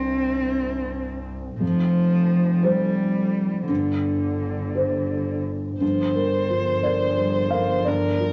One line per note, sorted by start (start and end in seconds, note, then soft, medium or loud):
0.00 1.63 C2 soft
0.00 1.62 G2 soft
0.00 1.28 C4 medium
1.60 3.71 F1 soft
1.60 3.64 F2 soft
1.60 2.65 F3 medium
2.63 3.67 G3 medium
2.63 3.65 G4 soft
2.63 3.65 C5 soft
3.68 5.80 G1 soft
3.68 5.77 G2 soft
3.68 5.42 D3 soft
4.75 5.77 G4 soft
4.75 5.77 C5 soft
5.80 8.33 G1 soft
5.80 7.81 G2 soft
5.80 6.17 F3 soft
5.80 7.89 C5 soft
6.15 6.50 G3 soft
6.15 6.70 A#4 soft
6.49 8.33 F3 soft
6.49 7.05 F4 soft
6.83 7.39 A#4 soft
6.83 7.48 D5 medium
7.18 7.72 G3 soft
7.50 8.07 A#4 soft
7.50 7.83 F5 medium
7.85 8.33 G2 soft
7.85 8.33 A#4 soft
7.85 8.33 D5 medium
8.20 8.33 F4 soft